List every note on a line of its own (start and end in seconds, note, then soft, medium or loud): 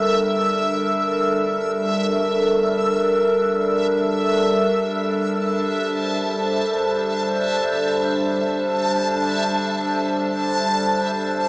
0.00 4.67 G1 medium
0.00 11.48 G3 medium
0.00 11.48 D4 medium
0.00 11.48 A4 medium
0.00 5.54 A#4 medium
0.00 11.48 E5 medium
0.00 4.79 E6 medium
4.73 11.48 G1 medium
4.73 11.48 A5 medium
5.48 11.48 C5 medium